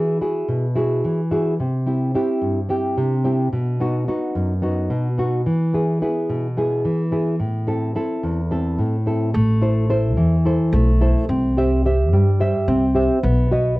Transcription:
Already playing: nylon-string guitar E3 E4 F#4 G#4
0.21 nylon-string guitar E4 F#4 G#4
0.49 nylon-string guitar B2
0.76 nylon-string guitar E4 F#4 G#4
1.05 nylon-string guitar E3
1.31 nylon-string guitar E4 F#4 G#4
1.60 nylon-string guitar C3
1.86 nylon-string guitar C4 E4 G4
2.15 nylon-string guitar C4 E4 G4
2.41 nylon-string guitar G2
2.69 nylon-string guitar C4 E4 G4
2.98 nylon-string guitar C3
3.24 nylon-string guitar C4 E4 G4
3.53 nylon-string guitar B2
3.80 nylon-string guitar B3 D#4 F#4
4.08 nylon-string guitar B3 D#4 F#4
4.35 nylon-string guitar F#2
4.62 nylon-string guitar B3 D#4 F#4
4.90 nylon-string guitar B2
5.18 nylon-string guitar B3 D#4 F#4
5.46 nylon-string guitar E3
5.73 nylon-string guitar B3 E4 G#4
6.02 nylon-string guitar B3 E4 G#4
6.29 nylon-string guitar B2
6.57 nylon-string guitar B3 E4 G#4
6.85 nylon-string guitar E3
7.11 nylon-string guitar B3 E4 G#4
7.40 nylon-string guitar A2
7.67 nylon-string guitar C4 E4 A4
7.95 nylon-string guitar C4 E4 A4
8.23 nylon-string guitar E2
8.51 nylon-string guitar C4 E4 A4
8.79 nylon-string guitar A2
9.06 nylon-string guitar C4 E4 A4
9.34 upright bass A1, nylon-string guitar A3
9.62 nylon-string guitar E4 A4 C5
9.90 nylon-string guitar E4 A4 C5
10.17 upright bass E2, nylon-string guitar E3
10.46 nylon-string guitar E4 A4 C5
10.73 upright bass B1, nylon-string guitar A3
11.01 nylon-string guitar E4 A4 C5
11.29 upright bass C2, nylon-string guitar C4
11.57 nylon-string guitar G4 C5 E5
11.85 nylon-string guitar G4 C5 E5
12.12 upright bass G2, nylon-string guitar G3
12.40 nylon-string guitar G4 C5 E5
12.68 upright bass C2, nylon-string guitar C4
12.95 nylon-string guitar G4 C5 E5
13.23 upright bass B1, nylon-string guitar B3
13.51 nylon-string guitar F#4 B4 D#5

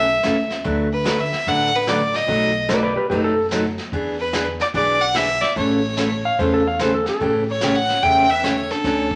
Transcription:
Already playing: upright bass B1, fiddle E5
0.23 upright bass C#2, steel-string acoustic guitar C#3 E3 A3 C#4 A4, snare, hi-hat pedal
0.50 snare
0.64 upright bass D2, steel-string acoustic guitar D3 F#3 A3 D4 F#4 B4, brush sweep, kick
0.93 fiddle B4
1.04 steel-string acoustic guitar D3 F#3 A3 D4 F#4 B4, snare, hi-hat pedal
1.20 fiddle E5
1.32 snare
1.46 upright bass A1, steel-string acoustic guitar D3 F#3 A3 D4 F#4 B4, fiddle F#5, brush sweep, kick
1.76 fiddle B4
1.87 steel-string acoustic guitar D3 F#3 A3 D4 F#4 B4, fiddle D5, snare, hi-hat pedal
2.14 fiddle D#5, snare
2.27 upright bass B1, steel-string acoustic guitar B2 F#3 A3 D#4 F#4, brush sweep, kick
2.69 steel-string acoustic guitar B2 F#3 A3 D#4 F#4, electric slide guitar B4 D5, snare, hi-hat pedal
2.83 electric slide guitar B4 D5
2.96 electric slide guitar G4 B4
3.10 upright bass F#1, steel-string acoustic guitar B2 F#3 A3 D#4 F#4, electric slide guitar G4 B4, brush sweep, kick
3.24 electric slide guitar A4
3.51 steel-string acoustic guitar B2 F#3 A3 D#4 F#4, snare, hi-hat pedal
3.78 snare
3.92 upright bass E2, steel-string acoustic guitar E3 B3 D4 G#4, brush sweep, kick
4.20 fiddle B4
4.33 steel-string acoustic guitar E3 B3 D4 G#4, snare, hi-hat pedal
4.60 fiddle D5, snare
4.74 upright bass B1, steel-string acoustic guitar E3 B3 D4 G#4, fiddle D5, brush sweep, kick
5.02 fiddle F#5
5.14 steel-string acoustic guitar E3 B3 D4 G#4, fiddle E5, snare, hi-hat pedal
5.41 fiddle D5, snare
5.56 upright bass A1, steel-string acoustic guitar C#3 E3 A3 C#4 A4, fiddle C#5, brush sweep, kick
5.97 steel-string acoustic guitar C#3 E3 A3 C#4 A4, snare, hi-hat pedal
6.25 electric slide guitar F5
6.38 upright bass E2, steel-string acoustic guitar C#3 E3 A3 C#4 A4, electric slide guitar C5, brush sweep, kick
6.54 electric slide guitar A4
6.67 electric slide guitar F5
6.79 steel-string acoustic guitar C#3 E3 A3 C#4 A4, electric slide guitar C5, snare, hi-hat pedal
6.94 electric slide guitar A4
7.06 electric slide guitar A4, snare
7.20 upright bass A1, steel-string acoustic guitar C#3 E3 A3 C#4 G4, brush sweep, kick
7.49 clarinet A4, fiddle C#5
7.61 steel-string acoustic guitar C#3 E3 A3 C#4 G4, snare, hi-hat pedal
7.75 clarinet C#5, fiddle F#5
7.89 snare
8.02 upright bass E2, steel-string acoustic guitar C#3 E3 A3 C#4 G4, clarinet E5, fiddle G5, brush sweep, kick
8.30 clarinet B4, fiddle E5
8.43 steel-string acoustic guitar C#3 E3 A3 C#4 G4, clarinet A4, fiddle C#5, snare, hi-hat pedal
8.70 clarinet D4, fiddle A4, snare
8.84 upright bass D2, steel-string acoustic guitar D3 F#3 A3 C#4 F#4, brush sweep, kick, snare
9.11 kick

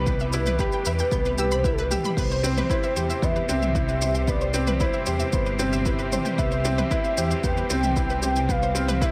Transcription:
Already playing: detuned saw bass C2, string section B2 E3 G3 G4, upright piano B3 E4 G4 B4, soft synth lead B4
0.07 upright piano B3, synth arpeggio sound B4, kick, shaker
0.20 synth arpeggio sound E5, shaker
0.33 upright piano E4, synth arpeggio sound B4, shaker
0.46 synth arpeggio sound B4, mid tom, shaker
0.59 upright piano G4, synth arpeggio sound B4, kick, shaker
0.72 synth arpeggio sound G5, shaker
0.85 detuned saw bass E2, upright piano B4, synth arpeggio sound E5, shaker
0.99 synth arpeggio sound G5, shaker
1.12 detuned saw bass C2, upright piano B3, synth arpeggio sound G6, kick, shaker
1.25 synth arpeggio sound B4, shaker
1.38 upright piano G4, synth arpeggio sound E6, shaker
1.51 soft synth lead C5, synth arpeggio sound B5, shaker
1.63 upright piano E4, soft synth lead B4, synth arpeggio sound E5, kick, shaker
1.73 soft synth lead A4
1.78 synth arpeggio sound B4, soft synth lead B4, shaker
1.91 upright piano G4, synth arpeggio sound E6, mid tom, shaker
2.04 synth arpeggio sound B5, mid tom, shaker
2.17 detuned saw bass C2, string section C3 G3 G4 C5, upright piano B3, synth arpeggio sound B4, soft synth lead C5, kick, crash, shaker
2.31 synth arpeggio sound C5, shaker
2.43 upright piano C4, synth arpeggio sound B4, shaker
2.57 synth arpeggio sound B4, mid tom, shaker
2.70 upright piano E4, synth arpeggio sound B4, kick, shaker
2.83 synth arpeggio sound E5, shaker
2.96 detuned saw bass E2, upright piano G4, synth arpeggio sound C5, shaker
3.10 synth arpeggio sound E5, shaker
3.22 detuned saw bass E2, upright piano B3, soft synth lead E5, synth arpeggio sound C6, kick, shaker
3.36 synth arpeggio sound B4, shaker
3.49 detuned saw bass C2, upright piano C4, synth arpeggio sound B4, shaker
3.62 synth arpeggio sound E5, mid tom, shaker
3.75 upright piano E4, synth arpeggio sound B4, kick, shaker
3.89 synth arpeggio sound B4, shaker
4.02 upright piano C4, synth arpeggio sound C5, shaker
4.15 synth arpeggio sound G5, shaker
4.28 upright piano B3, synth arpeggio sound B4, soft synth lead D5, kick, shaker
4.41 synth arpeggio sound C5, shaker
4.54 upright piano C4, synth arpeggio sound B4, shaker
4.67 synth arpeggio sound B4, mid tom, shaker
4.80 upright piano E4, synth arpeggio sound B4, soft synth lead C5, kick, shaker
4.93 synth arpeggio sound E5, shaker
5.06 detuned saw bass E2, upright piano G4, synth arpeggio sound C5, shaker
5.20 synth arpeggio sound E5, shaker
5.33 detuned saw bass G1, upright piano B3, synth arpeggio sound C6, kick, shaker
5.46 synth arpeggio sound B4, shaker
5.59 upright piano C4, synth arpeggio sound B4, shaker
5.73 synth arpeggio sound E5, shaker
5.86 upright piano E4, synth arpeggio sound B4, kick, shaker
5.99 synth arpeggio sound B4, shaker
6.12 upright piano C4, synth arpeggio sound C5, mid tom, shaker
6.25 synth arpeggio sound G5, mid tom, shaker
6.38 detuned saw bass C2, upright piano B3, synth arpeggio sound B4, soft synth lead E5, kick, shaker
6.51 synth arpeggio sound C5, shaker
6.65 upright piano C4, synth arpeggio sound B4, shaker
6.78 synth arpeggio sound B4, mid tom, shaker
6.91 upright piano E4, synth arpeggio sound B4, kick, shaker
7.04 synth arpeggio sound E5, shaker
7.17 detuned saw bass E2, upright piano G4, synth arpeggio sound C5, shaker
7.31 synth arpeggio sound E5, shaker
7.44 detuned saw bass E2, upright piano B3, soft synth lead G5, synth arpeggio sound C6, kick, shaker
7.57 synth arpeggio sound B4, shaker
7.70 detuned saw bass C2, upright piano C4, synth arpeggio sound B4, shaker
7.83 synth arpeggio sound E5, mid tom, shaker
7.96 upright piano E4, synth arpeggio sound B4, kick, shaker
8.10 synth arpeggio sound B4, shaker
8.22 upright piano C4, synth arpeggio sound C5, shaker
8.36 synth arpeggio sound G5, shaker
8.49 upright piano B3, synth arpeggio sound B4, soft synth lead F5, kick, shaker
8.63 synth arpeggio sound C5, shaker
8.75 upright piano C4, synth arpeggio sound B4, shaker
8.88 synth arpeggio sound B4, mid tom, shaker
9.01 upright piano E4, synth arpeggio sound B4, soft synth lead E5, kick, shaker

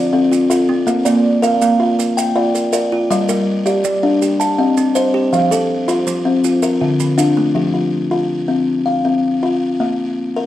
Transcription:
Already playing: kalimba F4 D5
0.12 kalimba C4 A4
0.31 kalimba F4, maracas
0.50 kalimba F4 A4, maracas
0.69 kalimba C4
0.87 kalimba A#3 A#4, maracas
1.05 kalimba A#3 D5, maracas
1.43 kalimba A#4 F5, maracas
1.62 kalimba A#3 F5, maracas
1.80 kalimba F4
1.99 kalimba A#4, maracas
2.17 kalimba G5, maracas
2.36 kalimba F4 D5
2.55 kalimba A#4, maracas
2.73 kalimba A#4 D5, maracas
2.92 kalimba F4
3.11 kalimba G3 D#5, maracas
3.29 kalimba G3 A#4, maracas
3.66 kalimba G4 D5, maracas
3.84 kalimba G3 D5, maracas
4.03 kalimba D4
4.22 kalimba G4, maracas
4.40 kalimba A5, maracas
4.58 kalimba C4 D#5
4.77 kalimba C4, maracas
4.95 kalimba C5 D#5, maracas
5.14 kalimba G4
5.33 kalimba F3 F5, maracas
5.51 kalimba F3 A4, maracas
5.88 kalimba F4 C5, maracas
6.07 kalimba F3 C5, maracas
6.25 kalimba C4
6.44 kalimba F4, maracas
6.63 kalimba A#4, maracas
6.81 kalimba D3 F4
7.00 kalimba D3, maracas
7.18 kalimba D4 F4, maracas
7.37 kalimba A3
7.55 kalimba F3 G4
7.74 kalimba F4
8.11 kalimba F4
8.48 kalimba C4
8.86 kalimba F5
9.05 kalimba C4
9.43 kalimba F4
9.80 kalimba A#3
10.36 kalimba A#4

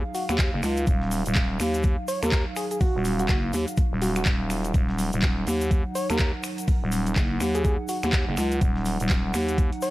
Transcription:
Already playing: analog synth pad F#3 D#4 F5, downlifter
0.15 soft synth lead F#4, closed hi-hat, open hi-hat, shaker
0.29 fm bass D#2, soft synth lead F#4, finger snap, closed hi-hat, shaker
0.38 kick, snare, clap, closed hi-hat, shaker
0.53 fm bass F#1
0.63 fm bass C#2, finger snap, closed hi-hat, open hi-hat, shaker
0.77 closed hi-hat, shaker
0.87 fm bass D#1, kick, closed hi-hat, shaker
1.02 snare
1.11 closed hi-hat, open hi-hat, shaker
1.26 fm bass D#1, closed hi-hat, shaker
1.35 kick, snare, clap, closed hi-hat, shaker
1.60 fm bass D#2, finger snap, closed hi-hat, open hi-hat, shaker
1.74 snare, closed hi-hat, shaker
1.83 kick, closed hi-hat, shaker
2.08 soft synth lead C#5, closed hi-hat, open hi-hat, shaker
2.23 fm bass D#2, soft synth lead A#4, finger snap, closed hi-hat, shaker
2.32 kick, snare, clap, closed hi-hat, shaker
2.56 soft synth lead G#4, finger snap, closed hi-hat, open hi-hat, shaker
2.71 soft synth lead G#4, closed hi-hat, shaker
2.81 soft synth lead F#4, kick, closed hi-hat, open hi-hat, shaker
2.95 fm bass D#1
3.05 closed hi-hat, open hi-hat, shaker
3.19 soft synth lead F#4, closed hi-hat, shaker
3.28 fm bass F#1, soft synth lead F#4, kick, snare, clap, closed hi-hat, shaker
3.53 fm bass D#2, closed hi-hat, open hi-hat, shaker
3.68 closed hi-hat, shaker
3.77 kick, closed hi-hat, shaker
3.92 fm bass D#1
4.02 soft synth lead F#4, closed hi-hat, open hi-hat, shaker
4.16 soft synth lead F#4, finger snap, closed hi-hat, shaker
4.25 fm bass D#1, kick, snare, clap, closed hi-hat, shaker
4.50 finger snap, closed hi-hat, open hi-hat, shaker
4.64 closed hi-hat, shaker
4.74 fm bass D#1, analog synth pad F#5, kick, closed hi-hat, shaker
4.89 snare
4.98 closed hi-hat, open hi-hat, shaker
5.13 fm bass D#1, closed hi-hat, shaker
5.22 kick, snare, clap, closed hi-hat, shaker
5.47 fm bass D#2, closed hi-hat, open hi-hat, shaker
5.61 snare, closed hi-hat, shaker
5.71 kick, closed hi-hat, shaker
5.95 soft synth lead C#5, closed hi-hat, open hi-hat, shaker
6.10 fm bass D#2, soft synth lead A#4, finger snap, closed hi-hat, shaker
6.19 kick, snare, clap, closed hi-hat, shaker
6.43 finger snap, closed hi-hat, open hi-hat, shaker
6.58 closed hi-hat, shaker
6.68 kick, closed hi-hat, open hi-hat, shaker
6.82 fm bass D#1
6.92 closed hi-hat, open hi-hat, shaker
7.06 closed hi-hat, shaker
7.16 fm bass F#1, kick, snare, clap, closed hi-hat, shaker
7.40 fm bass D#2, finger snap, closed hi-hat, open hi-hat, shaker
7.55 soft synth lead G#4, closed hi-hat, shaker
7.64 soft synth lead G#4, kick, closed hi-hat, shaker
7.88 soft synth lead F#4, closed hi-hat, open hi-hat, shaker
8.03 fm bass D#2, soft synth lead F#4, finger snap, closed hi-hat, shaker
8.13 kick, snare, clap, closed hi-hat, shaker
8.28 fm bass F#1
8.37 fm bass C#2, finger snap, closed hi-hat, open hi-hat, shaker
8.52 closed hi-hat, shaker
8.61 fm bass D#1, kick, closed hi-hat, shaker
8.76 snare
8.85 closed hi-hat, open hi-hat, shaker
9.00 fm bass D#1, closed hi-hat, shaker
9.09 kick, snare, clap, closed hi-hat, shaker
9.34 fm bass D#2, finger snap, closed hi-hat, open hi-hat, shaker
9.48 snare, closed hi-hat, shaker
9.58 kick, closed hi-hat, shaker
9.72 closed hi-hat
9.81 soft synth lead C#5, snare, open hi-hat, shaker

